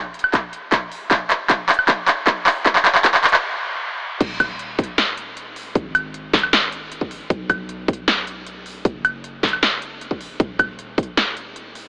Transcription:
0.14 closed hi-hat
0.19 closed hi-hat
0.24 high woodblock
0.33 kick, clap, closed hi-hat
0.53 closed hi-hat
0.72 kick, clap, closed hi-hat
0.92 open hi-hat
1.11 kick, clap, closed hi-hat
1.30 clap, closed hi-hat
1.50 kick, clap, closed hi-hat
1.69 clap, closed hi-hat
1.74 closed hi-hat
1.79 high woodblock
1.88 kick, clap, closed hi-hat
2.08 clap, closed hi-hat
2.27 kick, clap, closed hi-hat
2.46 clap, open hi-hat
2.66 kick, clap, closed hi-hat
2.76 clap
2.85 clap, closed hi-hat
2.95 clap
3.04 kick, clap, closed hi-hat
3.14 clap
3.24 clap, closed hi-hat
3.29 closed hi-hat
3.34 clap, high woodblock
4.21 808-style bass D#1, kick, closed hi-hat, crash
4.40 kick, closed hi-hat, high woodblock
4.59 closed hi-hat
4.79 kick, closed hi-hat
4.84 closed hi-hat
4.98 snare, closed hi-hat
5.17 closed hi-hat
5.37 closed hi-hat
5.56 open hi-hat
5.75 808-style bass G#1, kick, closed hi-hat
5.95 closed hi-hat, high woodblock
6.14 closed hi-hat
6.33 kick, snare, closed hi-hat
6.39 closed hi-hat
6.43 high woodblock
6.53 snare, closed hi-hat
6.72 closed hi-hat
6.92 closed hi-hat
7.01 kick
7.11 open hi-hat
7.30 808-style bass B1, kick, closed hi-hat
7.50 kick, closed hi-hat, high woodblock
7.69 closed hi-hat
7.88 kick, closed hi-hat
7.93 closed hi-hat
8.08 snare, closed hi-hat
8.27 closed hi-hat
8.47 closed hi-hat
8.66 open hi-hat
8.85 808-style bass F#1, kick, closed hi-hat
9.05 closed hi-hat, high woodblock
9.24 closed hi-hat
9.43 kick, snare, closed hi-hat
9.48 closed hi-hat
9.53 high woodblock
9.63 snare, closed hi-hat
9.82 closed hi-hat
10.01 closed hi-hat
10.11 kick
10.21 open hi-hat
10.40 808-style bass D#1, kick, closed hi-hat
10.59 kick, closed hi-hat, high woodblock
10.79 closed hi-hat
10.98 kick, closed hi-hat
11.03 closed hi-hat
11.17 snare, closed hi-hat
11.37 closed hi-hat
11.56 closed hi-hat
11.75 open hi-hat

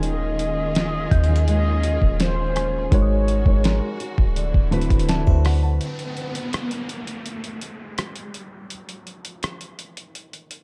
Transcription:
Already playing: 808-style bass D#1, felt piano D#3 C#4 F4 G#4 D#5, string section D#3 A#3 C#4 F4 G#4, steel-string acoustic guitar G#3 D#4
0.03 steel-string acoustic guitar D#3, soft synth lead D#5, closed hi-hat
0.39 steel-string acoustic guitar C#4, closed hi-hat
0.75 steel-string acoustic guitar F4, snare, closed hi-hat
1.11 808-style bass D#2, steel-string acoustic guitar C#4, celesta G6, kick, closed hi-hat
1.24 closed hi-hat
1.28 felt piano D#3 C#4 F4 G#4 D#5
1.36 closed hi-hat
1.48 steel-string acoustic guitar G#3, soft synth lead D#5, closed hi-hat
1.83 steel-string acoustic guitar F4, closed hi-hat
2.02 808-style bass D#1, kick
2.20 steel-string acoustic guitar C#4, soft synth lead C5, snare, closed hi-hat
2.56 steel-string acoustic guitar F4, celesta G#5, cross-stick, closed hi-hat
2.79 celesta C6
2.86 soft synth lead C5
2.91 808-style bass G#1, felt piano G#3 D#4 F#4 A#4 C#5, steel-string acoustic guitar G#3, string section G#3 F#4, soft synth lead C#5, kick, closed hi-hat
3.02 celesta D#6
3.28 steel-string acoustic guitar F#4, closed hi-hat
3.45 808-style bass G#1, felt piano G#3 D#4 F#4 A#4 C#5, kick
3.64 steel-string acoustic guitar A#4, celesta C6, snare, closed hi-hat
4.00 steel-string acoustic guitar F#4, closed hi-hat
4.18 808-style bass D1, kick
4.36 string section D3 A3 C4 D4 E4, steel-string acoustic guitar D3, closed hi-hat
4.54 808-style bass D1, kick
4.71 felt piano D3 A3 C4 E4 F#4 B4, steel-string acoustic guitar B4, closed hi-hat
4.81 closed hi-hat
4.90 808-style bass D1, kick, closed hi-hat
4.99 closed hi-hat
5.08 steel-string acoustic guitar E4, felt piano B4 D5, celesta A5, snare, closed hi-hat
5.27 808-style bass D2, steel-string acoustic guitar F#4, felt piano C5 E5, kick
5.45 steel-string acoustic guitar B4, felt piano D5 F#5, cross-stick, open hi-hat
5.63 felt piano F#5 A5
5.81 closed hi-hat, downlifter
5.99 closed hi-hat
6.17 closed hi-hat
6.35 closed hi-hat
6.53 cross-stick, closed hi-hat
6.71 closed hi-hat
6.89 closed hi-hat
7.07 closed hi-hat
7.26 closed hi-hat
7.44 closed hi-hat
7.61 closed hi-hat
7.98 cross-stick, closed hi-hat
8.16 closed hi-hat
8.34 closed hi-hat
8.70 closed hi-hat
8.89 closed hi-hat
9.07 closed hi-hat
9.25 closed hi-hat
9.43 cross-stick, closed hi-hat
9.61 closed hi-hat
9.79 closed hi-hat
9.97 closed hi-hat
10.15 closed hi-hat
10.33 closed hi-hat
10.51 closed hi-hat

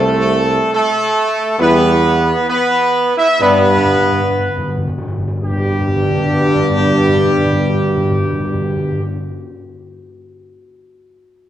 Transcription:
Already playing: tuba C2, french horn section G3 C4, trombone section A3, trumpet section A4
0.73 trombone section A3, trumpet section A4
1.59 tuba E2, french horn section G3 E4, trombone section B3, trumpet section B4
2.49 trombone section B3, trumpet section B4
3.18 trombone section E4, trumpet section E5
3.41 tuba G2, timpani G2, french horn section G3 D4, trombone section B3, trumpet section B4
3.49 timpani G2
3.58 timpani G2
3.76 timpani G2
3.85 timpani G2
3.94 timpani G2
4.02 timpani G2
4.12 timpani G2
4.21 timpani G2
4.30 timpani G2
4.39 timpani G2
4.49 timpani G2
4.58 timpani G2
4.68 timpani G2
4.77 timpani G2
4.87 timpani G2
4.98 timpani G2
5.08 timpani G2
5.18 timpani G2
5.28 timpani G2
5.43 timpani G2, tuba G2, trombone section G3, french horn section B3 D4, trumpet section G4
5.50 timpani G2
5.57 timpani G2
5.65 timpani G2
5.73 timpani G2
5.81 timpani G2
5.89 timpani G2
5.95 timpani G2
6.03 timpani G2
6.10 timpani G2
6.17 timpani G2
6.25 timpani G2
6.33 timpani G2
6.40 timpani G2
6.47 timpani G2
6.55 timpani G2
6.63 timpani G2
6.71 timpani G2
6.78 timpani G2
6.85 timpani G2
6.92 timpani G2
7.00 timpani G2
7.08 timpani G2
7.16 timpani G2
7.23 timpani G2
7.30 timpani G2
7.38 timpani G2
7.45 timpani G2
7.52 timpani G2
7.60 timpani G2
7.67 timpani G2
7.74 timpani G2
7.82 timpani G2
7.89 timpani G2
7.97 timpani G2
8.04 timpani G2
8.11 timpani G2
8.18 timpani G2
8.25 timpani G2
8.32 timpani G2
8.40 timpani G2
8.47 timpani G2
8.54 timpani G2
8.61 timpani G2
8.69 timpani G2
8.76 timpani G2
8.84 timpani G2
8.92 timpani G2
8.99 timpani G2

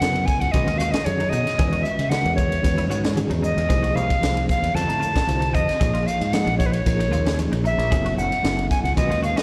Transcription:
Already playing: flute F#5
0.01 fingered electric bass F#2, reed electric piano C#3 F#3 B3 E4 B4, snare, hi-hat pedal, ride
0.15 ride
0.26 flute G#5, kick, hi-hat pedal
0.41 fingered electric bass C#2, flute F#5, ride
0.51 fingered electric bass B1, reed electric piano D#3 G#3 C#4 F#4 B4, flute D#5, kick, hi-hat pedal, ride
0.67 fingered electric bass D#2, clean electric guitar F4, ride
0.78 clean electric guitar F#4, flute F5, hi-hat pedal
0.91 clean electric guitar C#4, flute D#5, muted fingered electric bass stroke, snare, ride
1.05 fingered electric bass F#2, reed electric piano D#3 C#4 F#4 G#4 A4, flute C#5, hi-hat pedal, ride
1.20 clean electric guitar D#4, ride
1.29 fingered electric bass B2, clean electric guitar D#4, flute D#5, hi-hat pedal
1.47 snare, ride
1.58 fingered electric bass E2, reed electric piano D#3 G#3 C#4 F#4 B4, clean electric guitar G#4, kick, hi-hat pedal, ride
1.72 clean electric guitar F#4, ride
1.82 flute E5, hi-hat pedal
1.98 fingered electric bass C#3, ride
2.09 reed electric piano D#3 G#3 C#4 F#4 A#4, flute F#5, snare, hi-hat pedal, ride
2.25 fingered electric bass E2, ride
2.36 flute C#5, kick, hi-hat pedal
2.52 ride
2.62 fingered electric bass E2, reed electric piano D#3 G#3 C#4 F#4 B4, kick, hi-hat pedal, ride
2.78 clean electric guitar E4, ride
2.90 fingered electric bass G#2, clean electric guitar F#4, hi-hat pedal
3.04 clean electric guitar C#4, snare, ride
3.16 reed electric piano D#3 G#3 C#4 F#4 G#4, hi-hat pedal, ride
3.30 fingered electric bass E2, clean electric guitar D#4, ride
3.42 clean electric guitar D#4, flute D#5, hi-hat pedal
3.57 fingered electric bass E2, ride
3.68 fingered electric bass C2, reed electric piano F3 A#3 D#4 G#4 C5, clean electric guitar G#4, kick, hi-hat pedal, ride
3.83 clean electric guitar F#4, ride
3.95 fingered electric bass C2, flute F5, hi-hat pedal
4.10 kick, ride
4.21 fingered electric bass C2, reed electric piano F3 A#3 D#4 G#4 C5, snare, hi-hat pedal, ride
4.37 ride
4.49 flute F5, kick, snare, hi-hat pedal
4.63 fingered electric bass E2, ride
4.74 fingered electric bass F2, reed electric piano D3 G3 C4 F4 A4, flute A5, hi-hat pedal, ride
4.88 fingered electric bass A2, clean electric guitar D#4, ride
5.00 clean electric guitar F4, hi-hat pedal
5.15 clean electric guitar D4, kick, snare, ride
5.27 fingered electric bass C2, reed electric piano D3 G3 C4 F4 C5, hi-hat pedal, ride
5.40 clean electric guitar D#4, ride
5.53 fingered electric bass F2, clean electric guitar D#4, flute D#5, kick, hi-hat pedal
5.69 snare, ride
5.80 fingered electric bass A#1, reed electric piano F3 A#3 D#4 G#4 C#5, clean electric guitar G#4, kick, hi-hat pedal, ride
5.94 clean electric guitar F4, ride
6.06 flute F5, hi-hat pedal
6.21 fingered electric bass G#2, ride
6.33 reed electric piano F3 A#3 D#4 G#4 D#5, flute F#5, snare, hi-hat pedal, ride
6.47 fingered electric bass A#1, ride
6.58 flute C#5, kick, snare, hi-hat pedal
6.66 flute B4
6.72 flute C#5, ride
6.86 fingered electric bass A#1, reed electric piano F3 A#3 D#4 G#4 A#4, kick, hi-hat pedal, ride
6.99 clean electric guitar D#4, ride
7.12 fingered electric bass D#2, clean electric guitar F4, hi-hat pedal
7.26 clean electric guitar C#4, snare, ride
7.38 reed electric piano F3 A#3 D#4 G#4 C#5, hi-hat pedal, ride
7.52 fingered electric bass A#1, clean electric guitar D#4, ride
7.64 clean electric guitar D#4, flute E5, hi-hat pedal
7.78 fingered electric bass A#1, ride
7.91 fingered electric bass F#1, reed electric piano F#3 B3 E4 A4 C#5, clean electric guitar G#4, kick, hi-hat pedal, ride
8.05 clean electric guitar F#4, ride
8.17 fingered electric bass F#1, flute F#5, hi-hat pedal
8.32 ride
8.43 fingered electric bass F#1, reed electric piano F#3 B3 E4 A4 E5, snare, hi-hat pedal, ride
8.59 ride
8.70 flute G#5, kick, snare, hi-hat pedal
8.83 fingered electric bass C#2, flute F#5, ride
8.96 fingered electric bass B1, reed electric piano D#3 G#3 C#4 F#4 B4, flute D#5, kick, hi-hat pedal, ride
9.10 fingered electric bass D#2, clean electric guitar F4, ride
9.23 clean electric guitar F#4, flute F5, hi-hat pedal
9.36 clean electric guitar C#4, flute D#5, muted fingered electric bass stroke, snare, ride

